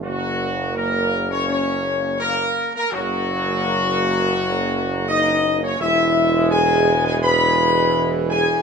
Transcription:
<<
  \new Staff \with { instrumentName = "Trumpet section" } { \time 4/4 \key fis \dorian \tempo 4 = 83 fis'4 ais'8. cis''16 cis''4 ais'8. ais'16 | fis'2. dis''8. cis''16 | e''4 gis''8. gis''16 b''4. gis''8 | }
  \new Staff \with { instrumentName = "French horn section" } { \time 4/4 \key fis \dorian fis4 ais8. cis'16 cis'4 ais8. ais16 | fis2. dis'8. cis'16 | e'4 gis'8. gis'16 b'4. gis'8 | }
  \new Staff \with { instrumentName = "Trombone section" } { \clef bass \time 4/4 \key fis \dorian <cis ais>1 | <cis ais>1 | <e gis>1 | }
  \new Staff \with { instrumentName = "Tuba" } { \clef bass \time 4/4 \key fis \dorian fis,,2.~ fis,,8 r8 | fis,,1 | e,,1 | }
>>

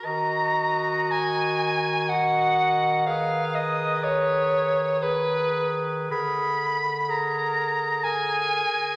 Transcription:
<<
  \new Staff \with { instrumentName = "Soprano saxophone" } { \time 3/4 \key ees \minor \tempo 4 = 61 bes''4 aes''4 ges''4 | f''8 ees''8 des''4 ces''8 r8 | ces'''4 bes''4 aes''4 | }
  \new Staff \with { instrumentName = "Clarinet" } { \time 3/4 \key ees \minor ees''2 ees''4 | ces''2 ces''4 | bes'8 r8 bes'4 bes'4 | }
  \new Staff \with { instrumentName = "Clarinet" } { \time 3/4 \key ees \minor ges'2 ges'4 | aes'2 aes'4 | aes'8 r8 aes'4 aes'4 | }
  \new Staff \with { instrumentName = "Bass clarinet" } { \clef bass \time 3/4 \key ees \minor ees2.~ | ees2. | d2~ d8 r8 | }
>>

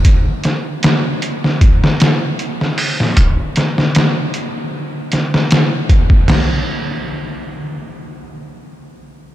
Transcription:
\new DrumStaff \with { instrumentName = "Drums" } \drummode { \time 4/4 \tempo 4 = 77 <hh bd>8 <hh sn>8 <hh sn>8 hh16 sn16 <hh bd>16 sn16 <hh sn>8 hh16 sn16 hho16 sn16 | <hh bd>8 <hh sn>16 sn16 <hh sn>8 hh8 r8 <hh sn>16 sn16 <hh sn>8 <hh bd>16 bd16 | <cymc sn tomfh>4 r4 r4 r4 | }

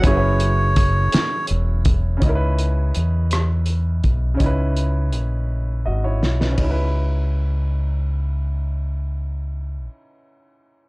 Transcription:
<<
  \new Staff \with { instrumentName = "Melodica" } { \time 6/8 \key cis \dorian \tempo 4. = 55 cis''2 r4 | r2. | r2. | r2. |
r2. | }
  \new Staff \with { instrumentName = "Grand piano" } { \time 6/8 \key cis \dorian << { r2. | r2. | r2 <fis' dis''>16 <e' cis''>8 <dis' b'>16~ | <dis' b'>16 r2 r8. |
r2. | } \\ { <fis cis' e' gis' b' cis''>2. | <cis cis' dis' e' ais' b'>2. | <cis cis' dis' e' b'>2. | <cis cis' dis' e' b'>2.~ |
<cis cis' dis' e' b'>2. | } >> }
  \new Staff \with { instrumentName = "Analog synth pad" } { \time 6/8 \key cis \dorian <fis cis' e' ais'>2. | r2. | r2. | r2. |
r2. | }
  \new Staff \with { instrumentName = "Fingered electric bass" } { \clef bass \time 6/8 \key cis \dorian fis,,4. r8 e,,4 | cis,4 e,4. b,,8 | cis,4 ais,,4 gis,,8 b,,8 | cis,2.~ |
cis,2. | }
  \new DrumStaff \with { instrumentName = "Drums" } \drummode { \time 6/8 <hh bd>8 hh8 <hh bd>8 <hh sn>8 hh8 <hh bd>8 | <hh bd>8 hh8 hh8 <hh ss>8 hh8 <hh bd>8 | <hh bd>8 hh8 hh8 r4 sn16 sn16 | <bd cymr>4. r4. |
r4. r4. | }
>>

